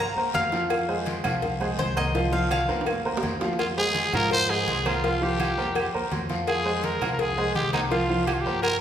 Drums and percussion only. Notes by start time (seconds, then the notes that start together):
0.17 high conga
0.34 cowbell, high conga, low timbale, low agogo, short guiro
0.52 cowbell, short guiro
0.70 cowbell, high conga, low agogo, long guiro, claves
0.89 high conga
1.06 cowbell, high conga, low agogo, short guiro
1.24 cowbell, high conga, low conga, low agogo, short guiro, claves
1.42 cowbell, high conga, low conga, long guiro
1.60 high conga, low agogo
1.78 cowbell, high conga, low agogo, short guiro
1.97 cowbell, high conga, low agogo, short guiro, claves
2.15 cowbell, high conga, long guiro
2.33 high conga
2.51 cowbell, high conga, low agogo, short guiro, claves
2.69 high conga, high timbale, short guiro
2.81 high timbale
2.86 cowbell, high conga, low agogo, long guiro, claves
2.93 low timbale
3.05 high conga
3.17 low timbale
3.23 cowbell, high conga, low agogo, short guiro
3.41 cowbell, low timbale, short guiro
3.53 low timbale
3.59 cowbell, high conga, low agogo, long guiro, claves
3.77 high conga
3.95 cowbell, high conga, low agogo, short guiro
4.13 cowbell, high conga, low conga, low agogo, short guiro, claves
4.31 cowbell, high conga, long guiro
4.49 high conga, low agogo
4.67 cowbell, high conga, low agogo, short guiro
4.86 cowbell, high conga, low agogo, short guiro, claves
5.04 cowbell, high conga, long guiro
5.22 high conga
5.40 cowbell, high conga, low agogo, short guiro, claves
5.58 high conga, short guiro
5.75 cowbell, high conga, low agogo, long guiro, claves
5.94 high conga
6.11 cowbell, high conga, low timbale, low agogo, short guiro
6.29 cowbell, high conga, short guiro
6.47 cowbell, high conga, low agogo, long guiro, claves
6.66 high conga
6.83 cowbell, high conga, low agogo, short guiro
7.01 cowbell, high conga, low conga, low agogo, short guiro, claves
7.19 cowbell, high conga, long guiro
7.38 high conga, low agogo
7.55 cowbell, high conga, low agogo, short guiro
7.73 cowbell, high conga, low agogo, short guiro, claves
7.91 cowbell, high conga, long guiro
8.10 high conga
8.27 cowbell, high conga, low agogo, short guiro, claves
8.45 high conga, short guiro
8.63 cowbell, high conga, low agogo, long guiro, claves